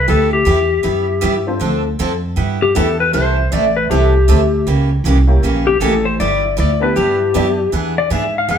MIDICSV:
0, 0, Header, 1, 5, 480
1, 0, Start_track
1, 0, Key_signature, 1, "major"
1, 0, Tempo, 382166
1, 104, Time_signature, 4, 2, 24, 8
1, 10778, End_track
2, 0, Start_track
2, 0, Title_t, "Electric slide guitar"
2, 0, Program_c, 0, 29
2, 119, Note_on_c, 0, 69, 83
2, 407, Note_off_c, 0, 69, 0
2, 415, Note_on_c, 0, 67, 100
2, 1809, Note_off_c, 0, 67, 0
2, 3295, Note_on_c, 0, 67, 91
2, 3463, Note_off_c, 0, 67, 0
2, 3466, Note_on_c, 0, 69, 76
2, 3760, Note_off_c, 0, 69, 0
2, 3771, Note_on_c, 0, 71, 82
2, 3940, Note_off_c, 0, 71, 0
2, 3945, Note_on_c, 0, 72, 102
2, 4411, Note_off_c, 0, 72, 0
2, 4438, Note_on_c, 0, 74, 75
2, 4726, Note_off_c, 0, 74, 0
2, 4729, Note_on_c, 0, 71, 80
2, 4900, Note_off_c, 0, 71, 0
2, 4907, Note_on_c, 0, 67, 96
2, 5838, Note_off_c, 0, 67, 0
2, 7120, Note_on_c, 0, 67, 93
2, 7292, Note_off_c, 0, 67, 0
2, 7297, Note_on_c, 0, 69, 81
2, 7596, Note_off_c, 0, 69, 0
2, 7603, Note_on_c, 0, 72, 89
2, 7777, Note_off_c, 0, 72, 0
2, 7786, Note_on_c, 0, 74, 102
2, 8252, Note_off_c, 0, 74, 0
2, 8288, Note_on_c, 0, 74, 89
2, 8572, Note_off_c, 0, 74, 0
2, 8575, Note_on_c, 0, 71, 80
2, 8744, Note_off_c, 0, 71, 0
2, 8745, Note_on_c, 0, 67, 100
2, 9677, Note_off_c, 0, 67, 0
2, 10026, Note_on_c, 0, 74, 100
2, 10190, Note_off_c, 0, 74, 0
2, 10206, Note_on_c, 0, 76, 81
2, 10492, Note_off_c, 0, 76, 0
2, 10528, Note_on_c, 0, 77, 83
2, 10681, Note_off_c, 0, 77, 0
2, 10687, Note_on_c, 0, 79, 93
2, 10778, Note_off_c, 0, 79, 0
2, 10778, End_track
3, 0, Start_track
3, 0, Title_t, "Honky-tonk piano"
3, 0, Program_c, 1, 3
3, 1844, Note_on_c, 1, 60, 67
3, 1847, Note_on_c, 1, 62, 66
3, 1849, Note_on_c, 1, 65, 63
3, 1852, Note_on_c, 1, 69, 65
3, 1858, Note_on_c, 1, 72, 75
3, 2005, Note_off_c, 1, 60, 0
3, 2007, Note_off_c, 1, 62, 0
3, 2008, Note_off_c, 1, 65, 0
3, 2009, Note_off_c, 1, 69, 0
3, 2012, Note_off_c, 1, 72, 0
3, 3452, Note_on_c, 1, 59, 66
3, 3455, Note_on_c, 1, 62, 62
3, 3455, Note_on_c, 1, 64, 62
3, 3462, Note_on_c, 1, 67, 60
3, 3468, Note_on_c, 1, 71, 76
3, 3732, Note_off_c, 1, 59, 0
3, 3733, Note_off_c, 1, 62, 0
3, 3733, Note_off_c, 1, 64, 0
3, 3737, Note_off_c, 1, 67, 0
3, 3740, Note_off_c, 1, 71, 0
3, 3925, Note_on_c, 1, 57, 58
3, 3932, Note_on_c, 1, 60, 52
3, 3937, Note_on_c, 1, 64, 49
3, 3944, Note_on_c, 1, 67, 49
3, 3944, Note_on_c, 1, 69, 59
3, 4209, Note_off_c, 1, 57, 0
3, 4212, Note_off_c, 1, 60, 0
3, 4214, Note_off_c, 1, 64, 0
3, 4218, Note_off_c, 1, 67, 0
3, 4218, Note_off_c, 1, 69, 0
3, 4891, Note_on_c, 1, 57, 69
3, 4899, Note_on_c, 1, 60, 64
3, 4899, Note_on_c, 1, 64, 65
3, 4899, Note_on_c, 1, 67, 61
3, 4910, Note_on_c, 1, 69, 76
3, 5172, Note_off_c, 1, 57, 0
3, 5175, Note_off_c, 1, 60, 0
3, 5176, Note_off_c, 1, 64, 0
3, 5176, Note_off_c, 1, 67, 0
3, 5181, Note_off_c, 1, 69, 0
3, 6624, Note_on_c, 1, 64, 70
3, 6625, Note_on_c, 1, 58, 72
3, 6632, Note_on_c, 1, 61, 70
3, 6636, Note_on_c, 1, 70, 78
3, 6637, Note_on_c, 1, 67, 72
3, 6795, Note_off_c, 1, 64, 0
3, 6796, Note_off_c, 1, 58, 0
3, 6799, Note_off_c, 1, 61, 0
3, 6801, Note_off_c, 1, 70, 0
3, 6802, Note_off_c, 1, 67, 0
3, 8543, Note_on_c, 1, 59, 77
3, 8546, Note_on_c, 1, 62, 78
3, 8554, Note_on_c, 1, 64, 74
3, 8557, Note_on_c, 1, 67, 69
3, 8563, Note_on_c, 1, 71, 86
3, 9178, Note_off_c, 1, 59, 0
3, 9179, Note_off_c, 1, 62, 0
3, 9183, Note_off_c, 1, 64, 0
3, 9185, Note_off_c, 1, 67, 0
3, 9188, Note_off_c, 1, 71, 0
3, 9214, Note_on_c, 1, 59, 80
3, 9222, Note_on_c, 1, 64, 66
3, 9226, Note_on_c, 1, 62, 67
3, 9229, Note_on_c, 1, 67, 66
3, 9240, Note_on_c, 1, 74, 79
3, 9494, Note_off_c, 1, 59, 0
3, 9498, Note_off_c, 1, 64, 0
3, 9500, Note_off_c, 1, 62, 0
3, 9501, Note_off_c, 1, 67, 0
3, 9507, Note_off_c, 1, 74, 0
3, 10778, End_track
4, 0, Start_track
4, 0, Title_t, "Steel-string acoustic guitar"
4, 0, Program_c, 2, 25
4, 97, Note_on_c, 2, 55, 57
4, 103, Note_on_c, 2, 59, 56
4, 103, Note_on_c, 2, 64, 57
4, 103, Note_on_c, 2, 67, 66
4, 371, Note_off_c, 2, 55, 0
4, 374, Note_off_c, 2, 59, 0
4, 374, Note_off_c, 2, 64, 0
4, 374, Note_off_c, 2, 67, 0
4, 566, Note_on_c, 2, 55, 63
4, 580, Note_on_c, 2, 59, 68
4, 585, Note_on_c, 2, 64, 74
4, 587, Note_on_c, 2, 67, 78
4, 719, Note_off_c, 2, 55, 0
4, 725, Note_off_c, 2, 59, 0
4, 728, Note_off_c, 2, 64, 0
4, 729, Note_off_c, 2, 67, 0
4, 1041, Note_on_c, 2, 55, 50
4, 1045, Note_on_c, 2, 59, 66
4, 1054, Note_on_c, 2, 64, 60
4, 1056, Note_on_c, 2, 67, 64
4, 1323, Note_off_c, 2, 55, 0
4, 1325, Note_off_c, 2, 59, 0
4, 1329, Note_off_c, 2, 64, 0
4, 1331, Note_off_c, 2, 67, 0
4, 1521, Note_on_c, 2, 55, 79
4, 1527, Note_on_c, 2, 59, 84
4, 1532, Note_on_c, 2, 64, 87
4, 1539, Note_on_c, 2, 67, 85
4, 1676, Note_off_c, 2, 55, 0
4, 1679, Note_off_c, 2, 59, 0
4, 1682, Note_off_c, 2, 64, 0
4, 1685, Note_off_c, 2, 67, 0
4, 2005, Note_on_c, 2, 50, 54
4, 2017, Note_on_c, 2, 60, 60
4, 2018, Note_on_c, 2, 53, 54
4, 2019, Note_on_c, 2, 62, 59
4, 2025, Note_on_c, 2, 69, 67
4, 2285, Note_off_c, 2, 50, 0
4, 2291, Note_off_c, 2, 60, 0
4, 2292, Note_off_c, 2, 53, 0
4, 2292, Note_off_c, 2, 62, 0
4, 2295, Note_off_c, 2, 69, 0
4, 2500, Note_on_c, 2, 50, 65
4, 2505, Note_on_c, 2, 53, 62
4, 2506, Note_on_c, 2, 62, 68
4, 2508, Note_on_c, 2, 69, 78
4, 2509, Note_on_c, 2, 60, 73
4, 2645, Note_off_c, 2, 50, 0
4, 2648, Note_off_c, 2, 53, 0
4, 2649, Note_off_c, 2, 62, 0
4, 2650, Note_off_c, 2, 60, 0
4, 2650, Note_off_c, 2, 69, 0
4, 2964, Note_on_c, 2, 55, 53
4, 2972, Note_on_c, 2, 67, 68
4, 2973, Note_on_c, 2, 59, 57
4, 2977, Note_on_c, 2, 64, 59
4, 3245, Note_off_c, 2, 55, 0
4, 3249, Note_off_c, 2, 59, 0
4, 3249, Note_off_c, 2, 67, 0
4, 3251, Note_off_c, 2, 64, 0
4, 3455, Note_on_c, 2, 55, 79
4, 3465, Note_on_c, 2, 64, 82
4, 3466, Note_on_c, 2, 67, 88
4, 3468, Note_on_c, 2, 59, 76
4, 3603, Note_off_c, 2, 55, 0
4, 3608, Note_off_c, 2, 64, 0
4, 3608, Note_off_c, 2, 67, 0
4, 3609, Note_off_c, 2, 59, 0
4, 3935, Note_on_c, 2, 48, 55
4, 3937, Note_on_c, 2, 52, 60
4, 3943, Note_on_c, 2, 57, 63
4, 3944, Note_on_c, 2, 64, 62
4, 3944, Note_on_c, 2, 69, 66
4, 4210, Note_off_c, 2, 48, 0
4, 4211, Note_off_c, 2, 52, 0
4, 4214, Note_off_c, 2, 57, 0
4, 4215, Note_off_c, 2, 64, 0
4, 4215, Note_off_c, 2, 69, 0
4, 4418, Note_on_c, 2, 52, 65
4, 4419, Note_on_c, 2, 48, 65
4, 4424, Note_on_c, 2, 57, 72
4, 4424, Note_on_c, 2, 64, 65
4, 4426, Note_on_c, 2, 69, 68
4, 4565, Note_off_c, 2, 48, 0
4, 4565, Note_off_c, 2, 52, 0
4, 4568, Note_off_c, 2, 57, 0
4, 4568, Note_off_c, 2, 64, 0
4, 4568, Note_off_c, 2, 69, 0
4, 4909, Note_on_c, 2, 48, 55
4, 4910, Note_on_c, 2, 52, 58
4, 4913, Note_on_c, 2, 57, 57
4, 4918, Note_on_c, 2, 64, 63
4, 4920, Note_on_c, 2, 69, 62
4, 5177, Note_off_c, 2, 48, 0
4, 5178, Note_off_c, 2, 52, 0
4, 5179, Note_off_c, 2, 57, 0
4, 5182, Note_off_c, 2, 64, 0
4, 5183, Note_off_c, 2, 69, 0
4, 5375, Note_on_c, 2, 48, 81
4, 5380, Note_on_c, 2, 57, 80
4, 5384, Note_on_c, 2, 52, 83
4, 5393, Note_on_c, 2, 64, 88
4, 5393, Note_on_c, 2, 69, 84
4, 5524, Note_off_c, 2, 48, 0
4, 5526, Note_off_c, 2, 57, 0
4, 5528, Note_off_c, 2, 52, 0
4, 5532, Note_off_c, 2, 64, 0
4, 5532, Note_off_c, 2, 69, 0
4, 5862, Note_on_c, 2, 49, 57
4, 5862, Note_on_c, 2, 52, 59
4, 5871, Note_on_c, 2, 58, 70
4, 5872, Note_on_c, 2, 61, 60
4, 5873, Note_on_c, 2, 67, 66
4, 6134, Note_off_c, 2, 49, 0
4, 6134, Note_off_c, 2, 52, 0
4, 6138, Note_off_c, 2, 58, 0
4, 6139, Note_off_c, 2, 61, 0
4, 6139, Note_off_c, 2, 67, 0
4, 6343, Note_on_c, 2, 49, 73
4, 6352, Note_on_c, 2, 52, 70
4, 6355, Note_on_c, 2, 58, 75
4, 6356, Note_on_c, 2, 61, 79
4, 6359, Note_on_c, 2, 67, 73
4, 6487, Note_off_c, 2, 49, 0
4, 6492, Note_off_c, 2, 52, 0
4, 6493, Note_off_c, 2, 58, 0
4, 6494, Note_off_c, 2, 61, 0
4, 6495, Note_off_c, 2, 67, 0
4, 6822, Note_on_c, 2, 49, 54
4, 6830, Note_on_c, 2, 52, 62
4, 6835, Note_on_c, 2, 58, 61
4, 6835, Note_on_c, 2, 61, 56
4, 6840, Note_on_c, 2, 67, 63
4, 7094, Note_off_c, 2, 49, 0
4, 7098, Note_off_c, 2, 52, 0
4, 7101, Note_off_c, 2, 58, 0
4, 7101, Note_off_c, 2, 61, 0
4, 7103, Note_off_c, 2, 67, 0
4, 7294, Note_on_c, 2, 49, 71
4, 7297, Note_on_c, 2, 58, 80
4, 7300, Note_on_c, 2, 52, 80
4, 7301, Note_on_c, 2, 61, 87
4, 7307, Note_on_c, 2, 67, 88
4, 7443, Note_off_c, 2, 49, 0
4, 7444, Note_off_c, 2, 58, 0
4, 7446, Note_off_c, 2, 52, 0
4, 7446, Note_off_c, 2, 61, 0
4, 7449, Note_off_c, 2, 67, 0
4, 7786, Note_on_c, 2, 55, 64
4, 7788, Note_on_c, 2, 59, 60
4, 7790, Note_on_c, 2, 64, 64
4, 7800, Note_on_c, 2, 67, 68
4, 8056, Note_off_c, 2, 55, 0
4, 8057, Note_off_c, 2, 59, 0
4, 8058, Note_off_c, 2, 64, 0
4, 8063, Note_off_c, 2, 67, 0
4, 8248, Note_on_c, 2, 55, 71
4, 8260, Note_on_c, 2, 59, 71
4, 8268, Note_on_c, 2, 64, 73
4, 8269, Note_on_c, 2, 67, 71
4, 8400, Note_off_c, 2, 55, 0
4, 8406, Note_off_c, 2, 59, 0
4, 8410, Note_off_c, 2, 64, 0
4, 8410, Note_off_c, 2, 67, 0
4, 8739, Note_on_c, 2, 55, 59
4, 8748, Note_on_c, 2, 64, 57
4, 8751, Note_on_c, 2, 59, 60
4, 8753, Note_on_c, 2, 67, 66
4, 9013, Note_off_c, 2, 55, 0
4, 9017, Note_off_c, 2, 64, 0
4, 9019, Note_off_c, 2, 59, 0
4, 9020, Note_off_c, 2, 67, 0
4, 9222, Note_on_c, 2, 55, 80
4, 9226, Note_on_c, 2, 59, 80
4, 9233, Note_on_c, 2, 64, 85
4, 9242, Note_on_c, 2, 67, 86
4, 9367, Note_off_c, 2, 55, 0
4, 9369, Note_off_c, 2, 59, 0
4, 9373, Note_off_c, 2, 64, 0
4, 9377, Note_off_c, 2, 67, 0
4, 9700, Note_on_c, 2, 52, 64
4, 9707, Note_on_c, 2, 59, 60
4, 9712, Note_on_c, 2, 62, 55
4, 9717, Note_on_c, 2, 68, 65
4, 9973, Note_off_c, 2, 52, 0
4, 9977, Note_off_c, 2, 59, 0
4, 9980, Note_off_c, 2, 62, 0
4, 9982, Note_off_c, 2, 68, 0
4, 10178, Note_on_c, 2, 52, 67
4, 10178, Note_on_c, 2, 59, 63
4, 10188, Note_on_c, 2, 68, 75
4, 10190, Note_on_c, 2, 62, 71
4, 10326, Note_off_c, 2, 52, 0
4, 10326, Note_off_c, 2, 59, 0
4, 10330, Note_off_c, 2, 68, 0
4, 10332, Note_off_c, 2, 62, 0
4, 10657, Note_on_c, 2, 52, 63
4, 10659, Note_on_c, 2, 59, 62
4, 10670, Note_on_c, 2, 62, 54
4, 10673, Note_on_c, 2, 68, 63
4, 10778, Note_off_c, 2, 52, 0
4, 10778, Note_off_c, 2, 59, 0
4, 10778, Note_off_c, 2, 62, 0
4, 10778, Note_off_c, 2, 68, 0
4, 10778, End_track
5, 0, Start_track
5, 0, Title_t, "Upright bass"
5, 0, Program_c, 3, 32
5, 99, Note_on_c, 3, 38, 85
5, 567, Note_off_c, 3, 38, 0
5, 581, Note_on_c, 3, 40, 102
5, 1048, Note_off_c, 3, 40, 0
5, 1062, Note_on_c, 3, 42, 90
5, 1529, Note_off_c, 3, 42, 0
5, 1547, Note_on_c, 3, 43, 103
5, 2012, Note_off_c, 3, 43, 0
5, 2025, Note_on_c, 3, 38, 87
5, 2491, Note_off_c, 3, 38, 0
5, 2509, Note_on_c, 3, 41, 95
5, 2968, Note_off_c, 3, 41, 0
5, 2975, Note_on_c, 3, 43, 93
5, 3446, Note_off_c, 3, 43, 0
5, 3474, Note_on_c, 3, 40, 99
5, 3936, Note_off_c, 3, 40, 0
5, 3951, Note_on_c, 3, 36, 85
5, 4414, Note_off_c, 3, 36, 0
5, 4429, Note_on_c, 3, 33, 102
5, 4893, Note_off_c, 3, 33, 0
5, 4906, Note_on_c, 3, 36, 96
5, 5371, Note_off_c, 3, 36, 0
5, 5382, Note_on_c, 3, 38, 95
5, 5849, Note_off_c, 3, 38, 0
5, 5860, Note_on_c, 3, 37, 89
5, 6323, Note_off_c, 3, 37, 0
5, 6331, Note_on_c, 3, 36, 101
5, 6804, Note_off_c, 3, 36, 0
5, 6814, Note_on_c, 3, 34, 85
5, 7279, Note_off_c, 3, 34, 0
5, 7286, Note_on_c, 3, 33, 100
5, 7761, Note_off_c, 3, 33, 0
5, 7788, Note_on_c, 3, 31, 89
5, 8253, Note_off_c, 3, 31, 0
5, 8271, Note_on_c, 3, 38, 98
5, 8734, Note_off_c, 3, 38, 0
5, 8754, Note_on_c, 3, 43, 90
5, 9216, Note_off_c, 3, 43, 0
5, 9231, Note_on_c, 3, 42, 100
5, 9695, Note_off_c, 3, 42, 0
5, 9707, Note_on_c, 3, 40, 88
5, 10173, Note_off_c, 3, 40, 0
5, 10183, Note_on_c, 3, 44, 96
5, 10651, Note_off_c, 3, 44, 0
5, 10659, Note_on_c, 3, 42, 93
5, 10778, Note_off_c, 3, 42, 0
5, 10778, End_track
0, 0, End_of_file